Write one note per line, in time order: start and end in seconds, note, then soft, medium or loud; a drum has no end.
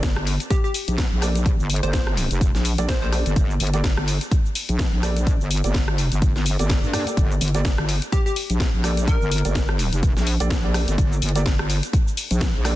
0.00 0.14 G1 medium
0.00 kick medium
0.00 snare loud
0.00 closed hi-hat medium
0.00 cabasa soft
0.16 0.38 G1 medium
0.16 cross-stick medium
0.27 open hi-hat medium
0.27 cabasa medium
0.40 closed hi-hat medium
0.40 cabasa soft
0.50 0.59 G4 medium
0.50 kick loud
0.50 closed hi-hat medium
0.50 cabasa soft
0.64 0.71 G4 medium
0.64 cabasa soft
0.74 open hi-hat loud
0.74 cabasa medium
0.88 1.09 A#1 medium
0.88 closed hi-hat medium
0.88 cabasa soft
0.98 kick loud
0.98 snare loud
0.98 closed hi-hat medium
0.98 cabasa soft
1.12 1.57 A#1 loud
1.22 1.35 A#3 medium
1.22 1.35 G4 medium
1.22 1.35 A4 medium
1.22 1.35 D5 medium
1.22 cross-stick medium
1.22 open hi-hat medium
1.22 cabasa medium
1.35 closed hi-hat medium
1.35 cabasa soft
1.46 kick loud
1.46 closed hi-hat medium
1.46 cabasa soft
1.59 1.81 G1 medium
1.59 cabasa soft
1.70 open hi-hat loud
1.70 cabasa medium
1.76 closed hi-hat medium
1.83 2.29 G1 medium
1.83 1.93 A#3 medium
1.83 1.93 G4 medium
1.83 1.93 A4 medium
1.83 1.90 C5 medium
1.83 1.93 D5 medium
1.83 closed hi-hat medium
1.83 cabasa soft
1.93 2.02 C5 medium
1.93 kick loud
1.93 snare loud
1.93 closed hi-hat medium
1.93 cabasa soft
2.07 cross-stick medium
2.17 open hi-hat medium
2.17 cabasa medium
2.31 2.52 F1 loud
2.31 closed hi-hat medium
2.31 cabasa soft
2.41 kick loud
2.41 closed hi-hat medium
2.41 cabasa soft
2.54 2.76 A#1 medium
2.54 snare soft
2.54 cabasa soft
2.65 open hi-hat loud
2.65 cabasa medium
2.78 3.24 A#1 medium
2.78 2.88 A#3 medium
2.78 2.88 G4 medium
2.78 2.88 A4 medium
2.78 2.88 D5 loud
2.78 closed hi-hat medium
2.78 cabasa soft
2.89 2.97 C5 medium
2.89 kick loud
2.89 snare loud
2.89 closed hi-hat medium
2.89 cabasa soft
3.02 3.70 A#3 medium
3.02 3.70 G4 medium
3.02 3.70 A4 medium
3.02 3.09 C5 medium
3.02 3.70 D5 medium
3.12 cross-stick medium
3.12 open hi-hat medium
3.12 cabasa medium
3.26 3.35 G1 medium
3.26 closed hi-hat medium
3.26 cabasa soft
3.36 3.58 G1 medium
3.36 kick loud
3.36 closed hi-hat medium
3.36 cabasa soft
3.50 cabasa soft
3.60 3.95 G1 loud
3.60 open hi-hat loud
3.60 cabasa medium
3.67 closed hi-hat medium
3.74 3.84 A#3 medium
3.74 3.84 G4 medium
3.74 3.84 A4 medium
3.74 3.84 D5 loud
3.74 closed hi-hat soft
3.74 cabasa soft
3.84 kick loud
3.84 snare loud
3.84 closed hi-hat medium
3.84 cabasa soft
3.97 4.19 G1 medium
3.97 cross-stick medium
4.08 open hi-hat loud
4.08 cabasa medium
4.21 closed hi-hat medium
4.21 cabasa soft
4.31 kick loud
4.31 closed hi-hat medium
4.31 cabasa soft
4.46 cabasa soft
4.55 open hi-hat loud
4.55 cabasa medium
4.69 4.90 A#1 medium
4.69 closed hi-hat medium
4.69 cabasa soft
4.79 kick loud
4.79 snare loud
4.79 closed hi-hat medium
4.79 cabasa soft
4.92 5.38 A#1 loud
5.03 5.16 A#3 medium
5.03 5.16 G4 medium
5.03 5.16 A4 medium
5.03 5.16 D5 medium
5.03 cross-stick medium
5.03 open hi-hat medium
5.03 cabasa medium
5.17 closed hi-hat soft
5.17 cabasa soft
5.27 kick loud
5.27 closed hi-hat medium
5.27 cabasa soft
5.40 5.62 G1 loud
5.40 cabasa soft
5.51 open hi-hat loud
5.51 cabasa medium
5.57 closed hi-hat medium
5.64 6.09 G1 medium
5.64 5.74 A#3 medium
5.64 5.74 G4 medium
5.64 5.74 A4 medium
5.64 5.74 D5 medium
5.64 closed hi-hat soft
5.64 cabasa soft
5.74 kick loud
5.74 snare loud
5.74 closed hi-hat medium
5.74 cabasa soft
5.88 cross-stick medium
5.98 open hi-hat medium
5.98 cabasa medium
6.12 6.57 G1 loud
6.12 closed hi-hat soft
6.12 cabasa soft
6.22 kick loud
6.22 closed hi-hat medium
6.22 cabasa soft
6.36 snare soft
6.36 cabasa soft
6.46 open hi-hat loud
6.46 cabasa medium
6.59 6.81 G1 loud
6.59 6.91 A#3 medium
6.59 6.91 G4 medium
6.59 6.91 A4 medium
6.59 6.91 D5 medium
6.59 closed hi-hat soft
6.59 cabasa soft
6.70 kick loud
6.70 snare loud
6.70 closed hi-hat medium
6.70 cabasa soft
6.83 7.05 G2 medium
6.83 cabasa soft
6.93 7.05 A#3 medium
6.93 7.05 G4 medium
6.93 7.05 A4 medium
6.93 7.05 D5 loud
6.93 cross-stick medium
6.93 open hi-hat medium
6.93 cabasa medium
7.07 7.51 A#3 medium
7.07 7.51 G4 medium
7.07 7.51 A4 medium
7.07 7.51 D5 medium
7.07 closed hi-hat soft
7.07 cabasa soft
7.17 7.39 G1 medium
7.17 kick loud
7.17 closed hi-hat medium
7.17 cabasa soft
7.31 cabasa soft
7.41 7.76 G1 loud
7.41 open hi-hat loud
7.41 cabasa medium
7.48 closed hi-hat medium
7.54 7.65 A#3 medium
7.54 7.65 G4 medium
7.54 7.65 A4 medium
7.54 7.65 D5 loud
7.54 closed hi-hat soft
7.54 cabasa soft
7.65 kick loud
7.65 snare loud
7.65 closed hi-hat medium
7.65 cabasa soft
7.78 8.00 G1 medium
7.78 cross-stick medium
7.89 open hi-hat medium
7.89 cabasa medium
8.02 closed hi-hat soft
8.02 cabasa soft
8.12 8.21 G4 medium
8.12 kick loud
8.12 closed hi-hat medium
8.12 cabasa soft
8.26 8.33 G4 medium
8.26 cabasa soft
8.36 open hi-hat loud
8.36 cabasa medium
8.50 8.71 A#1 medium
8.50 closed hi-hat soft
8.50 cabasa soft
8.60 kick loud
8.60 snare loud
8.60 closed hi-hat medium
8.60 cabasa soft
8.74 9.19 A#1 loud
8.84 8.97 A#3 medium
8.84 8.97 G4 medium
8.84 8.97 A4 medium
8.84 8.97 D5 loud
8.84 cross-stick medium
8.84 open hi-hat medium
8.84 cabasa medium
8.97 closed hi-hat soft
8.97 cabasa soft
9.07 9.75 A#4 medium
9.07 kick loud
9.07 closed hi-hat medium
9.07 cabasa soft
9.21 9.43 G1 medium
9.21 cabasa soft
9.31 open hi-hat loud
9.31 cabasa medium
9.38 closed hi-hat medium
9.45 9.90 G1 medium
9.45 9.55 A#3 medium
9.45 9.55 G4 medium
9.45 9.55 A4 medium
9.45 9.55 D5 medium
9.45 closed hi-hat medium
9.45 cabasa soft
9.55 kick medium
9.55 snare loud
9.55 closed hi-hat medium
9.55 cabasa soft
9.69 cross-stick medium
9.79 open hi-hat medium
9.79 cabasa medium
9.93 10.14 F1 loud
9.93 closed hi-hat medium
9.93 cabasa soft
10.03 kick loud
10.03 closed hi-hat medium
10.03 cabasa soft
10.16 10.38 A#1 loud
10.16 snare soft
10.16 cabasa soft
10.27 open hi-hat loud
10.27 cabasa medium
10.40 10.86 A#1 loud
10.40 10.50 A#3 medium
10.40 10.50 G4 medium
10.40 10.50 A4 medium
10.40 10.50 D5 loud
10.40 closed hi-hat medium
10.40 cabasa soft
10.50 kick loud
10.50 snare loud
10.50 closed hi-hat medium
10.50 cabasa soft
10.64 11.32 A#3 medium
10.64 11.32 G4 medium
10.64 11.32 A4 medium
10.64 11.32 D5 medium
10.74 cross-stick medium
10.74 open hi-hat medium
10.74 cabasa medium
10.88 10.96 G1 medium
10.88 closed hi-hat medium
10.88 cabasa soft
10.98 11.20 G1 loud
10.98 kick loud
10.98 closed hi-hat medium
10.98 cabasa soft
11.12 cabasa soft
11.22 11.57 G1 loud
11.22 open hi-hat loud
11.22 cabasa medium
11.29 closed hi-hat medium
11.35 11.46 A#3 medium
11.35 11.46 G4 medium
11.35 11.46 A4 medium
11.35 11.46 D5 loud
11.35 closed hi-hat medium
11.35 cabasa soft
11.46 kick medium
11.46 snare loud
11.46 closed hi-hat medium
11.46 cabasa soft
11.59 11.81 G1 loud
11.59 cross-stick medium
11.70 open hi-hat medium
11.70 cabasa medium
11.83 closed hi-hat medium
11.83 cabasa soft
11.93 kick loud
11.93 closed hi-hat medium
11.93 cabasa soft
12.08 cabasa soft
12.17 open hi-hat loud
12.17 cabasa medium
12.31 12.52 A#1 loud
12.31 closed hi-hat medium
12.31 cabasa soft
12.41 kick loud
12.41 snare loud
12.41 closed hi-hat medium
12.41 cabasa soft
12.55 12.76 A#1 loud
12.65 12.76 A#3 medium
12.65 12.76 G4 medium
12.65 12.76 A4 medium
12.65 12.76 D5 loud
12.65 cross-stick medium
12.65 open hi-hat medium
12.65 cabasa medium